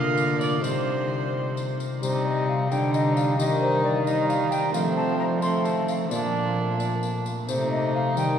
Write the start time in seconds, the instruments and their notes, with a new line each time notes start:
Already playing: harp A#2 D3 F3 D4 F4 A#4, cello D3, trombone A#3, recorder F4, violin F5
0.17 tambourine
0.41 violin D5, tambourine
0.61 harp C3 G4, cello C3, trombone G3, recorder D#4, violin C5, tambourine
1.57 tambourine
1.80 tambourine
1.99 cello C3, harp C3 C4 G4, trombone G3, violin D#4, recorder C5, tambourine
2.26 recorder D#5
2.48 recorder F5
2.71 cello D3, trombone G3, violin D#4, recorder G5, tambourine
2.94 recorder D#5, tambourine
3.16 recorder F5, tambourine
3.35 cello D#3, harp D#3 A#3 D#4 G4, trombone G3
3.40 violin D#4, recorder D#5, tambourine
3.61 recorder C5
3.84 recorder D5
4.06 trombone G3, violin D#4, recorder D#5, tambourine
4.29 recorder F5, tambourine
4.50 recorder G5, tambourine
4.70 harp F3 A3 C4 F4, recorder F5
4.74 cello F3, trombone A3, violin C4, tambourine
4.97 recorder A5
5.19 recorder A#5
5.42 trombone A3, violin C4, recorder C6, tambourine
5.65 recorder A5, tambourine
5.88 recorder F5, tambourine
6.08 harp A#2 A#3 D4 F4, trombone A#3, violin D4, recorder D5, tambourine
6.12 cello A#2
6.80 tambourine
7.03 tambourine
7.26 tambourine
7.46 harp C3 C4 D#4, cello C3, trombone A3, violin D#4, recorder C5, tambourine
7.71 recorder D#5
7.95 recorder F5
8.14 harp D#3 C4 D#4, cello D#3, trombone G3, recorder G5, tambourine